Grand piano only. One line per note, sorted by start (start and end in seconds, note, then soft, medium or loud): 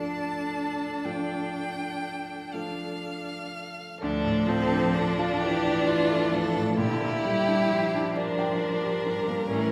0.00 4.02 D2 soft
0.00 1.01 F3 soft
0.00 1.01 D4 soft
0.00 1.02 A4 soft
1.05 2.49 F3 soft
1.05 2.49 D4 soft
1.05 2.49 A4 soft
2.54 3.96 F3 soft
2.54 3.96 D4 soft
2.54 3.96 A4 soft
4.02 6.73 D2 medium
4.24 4.61 A2 medium
4.47 4.84 F3 medium
4.72 5.08 D4 medium
4.96 5.32 A4 medium
5.19 5.54 F4 medium
5.43 5.77 D5 medium
5.65 6.00 A5 medium
5.87 6.22 D5 medium
6.11 6.45 A4 medium
6.32 6.67 F3 medium
6.56 6.77 A2 medium
6.78 9.46 A#2 medium
7.01 7.37 A#3 medium
7.24 7.60 G3 medium
7.47 7.83 D4 medium
7.71 8.06 G4 medium
7.94 8.29 D4 medium
8.17 8.52 D5 medium
8.39 8.74 G5 medium
8.61 8.96 D5 medium
8.83 9.18 G4 medium
9.06 9.41 G3 medium
9.28 9.50 A#3 medium
9.50 9.72 A2 medium